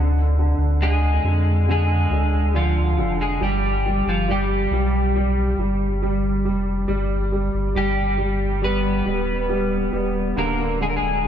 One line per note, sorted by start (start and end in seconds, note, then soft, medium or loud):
0.00 0.54 D2 loud
0.00 0.37 D3 medium
0.39 0.81 D3 soft
0.58 1.19 D2 loud
0.82 1.23 D3 medium
0.82 1.64 G#3 medium
0.82 1.70 G#4 loud
1.24 2.07 F2 medium
1.24 1.67 D3 medium
1.69 2.10 D3 medium
1.69 2.52 G#3 medium
1.69 2.56 G#4 medium
2.10 2.99 D2 medium
2.10 2.52 D3 soft
2.54 2.96 D3 medium
2.54 3.17 F3 medium
2.54 3.16 F4 medium
2.98 3.38 F1 medium
2.98 3.40 D3 medium
3.21 3.41 G#3 medium
3.21 3.41 G#4 medium
3.41 4.02 G1 loud
3.41 3.84 G3 medium
3.41 4.03 G3 medium
3.41 4.09 G4 medium
3.85 4.27 G3 soft
4.06 4.67 G1 medium
4.06 4.28 F3 medium
4.06 4.30 F4 medium
4.28 4.71 G3 medium
4.28 6.43 G3 medium
4.28 6.43 G4 medium
4.71 5.54 B1 medium
4.71 5.14 G3 medium
5.16 5.58 G3 medium
5.57 6.47 G1 loud
5.57 6.01 G3 soft
6.02 6.44 G3 medium
6.45 6.86 F1 loud
6.45 6.86 G3 soft
6.88 7.50 G1 loud
6.88 7.31 G3 medium
7.32 7.74 G3 soft
7.54 7.74 G1 medium
7.75 9.02 G1 medium
7.75 8.17 G3 medium
7.75 8.60 G3 medium
7.75 8.64 G4 medium
8.18 8.61 G3 medium
8.62 9.04 G3 medium
8.62 10.34 B3 medium
8.62 10.38 B4 loud
9.05 9.89 D1 loud
9.05 9.48 G3 medium
9.49 9.91 G3 medium
9.92 10.33 D#1 medium
9.92 10.35 G3 soft
10.36 10.98 D1 loud
10.36 10.79 D3 medium
10.36 10.78 A#3 medium
10.36 10.78 A#4 medium
10.80 11.23 D3 medium
10.80 10.88 G#3 medium
10.80 10.88 G#4 medium
10.89 10.95 A#4 medium
10.96 11.28 G#3 medium
10.96 11.28 G#4 medium
11.01 11.28 D1 loud